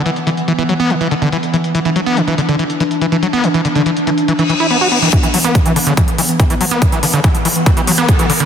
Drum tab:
HH |xxxxxxxxxxxxxxxx|xxxxxxxxxxxxxxxx|xxxxxxxxxxxxxxxx|xxoxxxoxxxoxxxox|
BD |----------------|----------------|----------------|o---o---o---o---|

HH |xxoxxxoxxxoxxxox|
BD |o---o---o---o---|